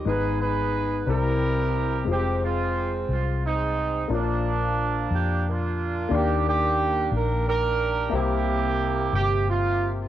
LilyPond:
<<
  \new Staff \with { instrumentName = "Horn section" } { \time 6/8 \key ees \major \tempo 4. = 60 << { ces''8 ces''4 bes'4. | g'8 f'4 f'8 ees'4 | d'4. g'8 f'4 | g'8 g'4 bes'8 bes'4 |
g'4. g'8 f'8 r8 | } \\ { <ees' aes'>8 <ees' aes'>4 <e' g'>4. | c'8 <aes c'>4. <aes c'>4 | <f bes>2 <bes d'>4 | <bes d'>8 <bes d'>4. <d' g'>4 |
<bes e'>4. r4. | } >> }
  \new Staff \with { instrumentName = "Upright piano" } { \time 6/8 \key ees \major <aes ces' ees' ces''>4. <g c' e' bes'>4. | <aes c' f' c''>2. | <bes d' f' des'' d''>2. | <bes d' g' d''>2. |
<bes g' c'' e''>2. | }
  \new Staff \with { instrumentName = "Upright piano" } { \clef bass \time 6/8 \key ees \major aes,4. c4. | r2. | bes,4. r4. | ees4. r4. |
c4. r4. | }
  \new Staff \with { instrumentName = "Fingered electric bass" } { \clef bass \time 6/8 \key ees \major aes,,4. c,4. | f,,4. c,4. | bes,,4. f,4. | ees,4. bes,,4. |
c,4. g,,4. | }
>>